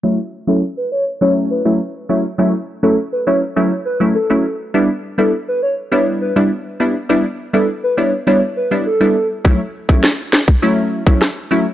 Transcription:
<<
  \new Staff \with { instrumentName = "Soft synth lead" } { \time 4/4 \key fis \phrygian \tempo 4 = 102 r8. a'16 r16 b'16 cis''16 r16 cis''16 r16 b'16 r4 r16 | r8. a'16 r16 b'16 cis''16 r16 cis''16 r16 b'16 r16 a'8. r16 | r8. a'16 r16 b'16 cis''16 r16 cis''16 r16 b'16 r4 r16 | r8. a'16 r16 b'16 cis''16 r16 cis''16 r16 b'16 r16 a'8. r16 |
r1 | }
  \new Staff \with { instrumentName = "Synth stab" } { \time 4/4 \key fis \phrygian <fis a cis' e'>16 r8 <fis a cis' e'>16 r4 <fis a cis' e'>8. <fis a cis' e'>16 r8 <fis a cis' e'>16 r16 | <fis a cis' e'>16 r8 <fis a cis' e'>16 r8 <fis a cis' e'>16 r16 <fis a cis' e'>16 r8 <fis a cis' e'>16 r16 <fis a cis' e'>16 r8 | <g b d' e'>16 r8 <g b d' e'>16 r4 <g b d' e'>8. <g b d' e'>16 r8 <g b d' e'>16 r16 | <g b d' e'>16 r8 <g b d' e'>16 r8 <g b d' e'>16 r16 <g b d' e'>16 r8 <g b d' e'>16 r16 <g b d' e'>16 r8 |
<fis a cis' e'>16 r8 <fis a cis' e'>16 r4 <fis a cis' e'>8. <fis a cis' e'>16 r8 <fis a cis' e'>16 r16 | }
  \new DrumStaff \with { instrumentName = "Drums" } \drummode { \time 4/4 r4 r4 r4 r4 | r4 r4 r4 r4 | r4 r4 r4 r4 | r4 r4 r4 r4 |
bd8. bd16 sn8 sn16 bd16 r8. bd16 <ss sn>4 | }
>>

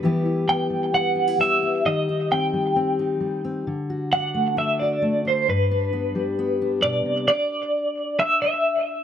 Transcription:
<<
  \new Staff \with { instrumentName = "Clean electric guitar" } { \time 4/4 \key g \major \tempo 4 = 132 r4 g''4 fis''4 e''4 | ees''4 g''2~ g''8 r8 | r4 fis''4 e''8 d''4 c''8 | b'2. d''4 |
d''2 e''8 e''4 r8 | }
  \new Staff \with { instrumentName = "Steel-string acoustic guitar" } { \time 4/4 \key g \major << { <g b e' g'>8 e'8 b4 b8 d'16 e'8. b8 | r8 ees'8 c'4 c'8 ees'4 c'8 | r8 fis'8 d'4 d'8 fis'4 d'8 | r8 d'8 b4 b8 d'4.~ |
d'1 | } \\ { e4. g4. g4 | ees4. g4. g4 | d4. a4. a4 | g,4. g4. b,8 c8 |
r1 | } >> }
>>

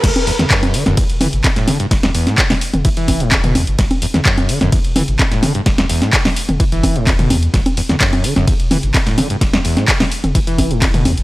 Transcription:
<<
  \new Staff \with { instrumentName = "Acid bass" } { \clef bass \time 4/4 \key e \minor \tempo 4 = 128 d,16 r16 e,16 e,16 fis,8 d16 fis,16 e,16 r16 e16 r8 a,16 d16 g,16 | r16 e,16 e,16 a,16 r16 b,16 r8 e16 e8 a,16 e,16 b,16 d,16 r16 | d,16 r16 e,16 e,16 fis,8 d16 fis,16 e,16 r16 e16 r8 a,16 d16 g,16 | r16 e,16 e,16 a,16 r16 b,16 r8 e16 e8 a,16 e,16 b,16 d,16 r16 |
d,16 r16 e,16 e,16 fis,8 d16 fis,16 e,16 r16 e16 r8 a,16 d16 g,16 | r16 e,16 e,16 a,16 r16 b,16 r8 e16 e8 a,16 e,16 b,16 d,16 r16 | }
  \new Staff \with { instrumentName = "Sub bass" } { \clef bass \time 4/4 \key e \minor e,,16 r4. e,,16 r16 e,,8 g,,16 r16 e,,16 r8 | e,,16 r4. e,,16 e,,8. e,,8. e,16 g,,16 | e,,16 r4. e,,16 r16 e,,8 g,,16 r16 e,,16 r8 | e,,16 r4. e,,16 r16 g,,16 e,,4 e,8 |
e,,16 r4. e,,16 r16 e,,8 g,,16 r16 e,,16 r8 | e,,16 r4. e,,16 e,,8. e,,8. e,16 g,,16 | }
  \new DrumStaff \with { instrumentName = "Drums" } \drummode { \time 4/4 <cymc hh bd cymr sn>16 <cgho hh>16 hho16 <cgho hh sn toml>16 <hc hh bd cymr>16 <cgho hh>16 hho16 <cgho hh sn toml>16 <hh bd cymr>16 hh16 <cgho hho toml>16 hh16 <hc cgho hh bd cymr>16 <hh sn>16 <cgho hho toml>16 hh16 | <hh bd cymr sn>16 <cgho hh sn>16 hho16 <cgho hh sn>16 <hc hh bd cymr>16 <cgho hho sn>16 hho16 <cgho hh toml>16 <hh bd cymr>16 hh16 <cgho hho bd>16 hh16 <hc cgho hh bd cymr>16 <hh toml>16 <cgho hho>16 hh16 | <hh bd cymr sn>16 <cgho hh>16 hho16 <cgho hh sn toml>16 <hc hh bd cymr>16 <cgho hh>16 hho16 <cgho hh sn toml>16 <hh bd cymr>16 hh16 <cgho hho toml>16 hh16 <hc cgho hh bd cymr>16 <hh sn>16 <cgho hho toml>16 hh16 | <hh bd cymr sn>16 <cgho hh sn>16 hho16 <cgho hh sn>16 <hc hh bd cymr>16 <cgho hho sn>16 hho16 <cgho hh toml>16 <hh bd cymr>16 hh16 <cgho hho bd>16 hh16 <hc cgho hh bd cymr>16 <hh toml>16 <cgho hho>16 hh16 |
<hh bd cymr sn>16 <cgho hh>16 hho16 <cgho hh sn toml>16 <hc hh bd cymr>16 <cgho hh>16 hho16 <cgho hh sn toml>16 <hh bd cymr>16 hh16 <cgho hho toml>16 hh16 <hc cgho hh bd cymr>16 <hh sn>16 <cgho hho toml>16 hh16 | <hh bd cymr sn>16 <cgho hh sn>16 hho16 <cgho hh sn>16 <hc hh bd cymr>16 <cgho hho sn>16 hho16 <cgho hh toml>16 <hh bd cymr>16 hh16 <cgho hho bd>16 hh16 <hc cgho hh bd cymr>16 <hh toml>16 <cgho hho>16 hh16 | }
>>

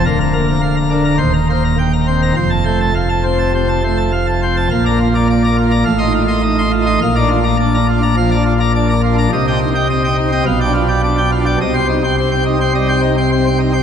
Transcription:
<<
  \new Staff \with { instrumentName = "Pipe organ" } { \time 4/4 \key bes \major \tempo 4 = 105 << { bes'16 bes''16 bes'16 bes''16 f''16 bes''16 bes'16 bes''16 c''16 bes''16 c''16 bes''16 g''16 bes''16 c''16 bes''16 | c''16 a''16 c''16 a''16 f''16 a''16 c''16 a''16 c''16 a''16 c''16 a''16 f''16 a''16 c''16 a''16 | f''16 <d'' bes''>16 f'16 <d'' bes''>16 d''16 <d'' bes''>16 f'16 <d'' bes''>16 f''16 <ees'' c'''>16 f'16 <ees'' c'''>16 ees''16 <ees'' c'''>16 f'16 <ees'' c'''>16 | f''16 <d'' bes''>16 f'16 <d'' bes''>16 d''16 <d'' bes''>16 f'16 <d'' bes''>16 f''16 <d'' bes''>16 f'16 <d'' bes''>16 d''16 <d'' bes''>16 f'16 <d'' bes''>16 |
ees''16 <ees'' g''>16 ees'16 <ees'' g''>16 ees''16 <ees'' g''>16 ees'16 <ees'' g''>16 f''16 <d'' g''>16 f'16 <d'' g''>16 d''16 <d'' g''>16 f'16 <d'' g''>16 | ees''16 <c'' g''>16 ees'16 <c'' g''>16 c''16 <c'' g''>16 ees'16 <c'' g''>16 ees''16 <c'' g''>16 ees'16 <c'' g''>16 c''16 <c'' g''>16 ees'16 <c'' g''>16 | } \\ { d,8 bes8 r8 d'8 ees,8 bes8 r8 c'8 | f,8 a8 r8 c'8 c8 a8 r8 c'8 | \tuplet 3/2 { bes,8 bes8 r8 bes8 r8 bes8 a,8 ees'8 r8 ees'8 r8 ees'8 } | \tuplet 3/2 { bes,8 d'8 r8 d'8 r8 d'8 f8 d'8 r8 d'8 r8 d'8 } |
\tuplet 3/2 { c8 c'8 r8 c'8 r8 c'8 b,8 d'8 r8 d'8 r8 d'8 } | \tuplet 3/2 { c8 c'8 r8 c'8 r8 c'8 g8 c'8 r8 c'8 r8 c'8 } | } >> }
  \new Staff \with { instrumentName = "Pipe organ" } { \clef bass \time 4/4 \key bes \major d,,2 ees,,2 | f,,1 | bes,,2 a,,2 | bes,,1 |
c,2 b,,2 | c,1 | }
>>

